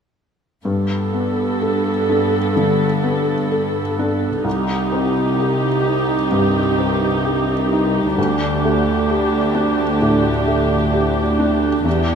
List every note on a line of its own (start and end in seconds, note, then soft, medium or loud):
0.65 2.53 G2 soft
0.65 4.42 G2 soft
0.65 4.42 B3 soft
0.65 4.42 A4 soft
1.13 1.90 B3 soft
1.61 2.38 A4 soft
2.09 2.85 D4 soft
2.56 3.32 D3 soft
3.04 3.79 B3 soft
3.52 4.27 A4 soft
3.99 4.46 D4 soft
4.44 6.27 C2 soft
4.44 8.14 C2 soft
4.44 8.13 D#4 soft
4.44 8.16 G4 soft
4.92 5.67 C4 soft
5.40 6.14 G4 soft
5.85 6.60 D#4 soft
6.31 7.06 G2 soft
6.78 7.53 C4 soft
7.25 7.99 G4 soft
7.72 8.18 D#4 soft
8.17 11.82 D2 soft
8.17 9.96 D2 soft
8.17 11.81 D4 soft
8.17 11.82 G4 soft
8.65 9.36 A3 soft
9.10 9.82 G4 soft
9.54 10.28 D4 soft
10.01 10.75 A2 soft
10.47 11.21 A3 soft
10.94 11.68 G4 soft
11.39 11.86 D4 soft
11.85 12.15 E2 soft
11.85 12.15 D4 soft
11.85 12.15 G4 soft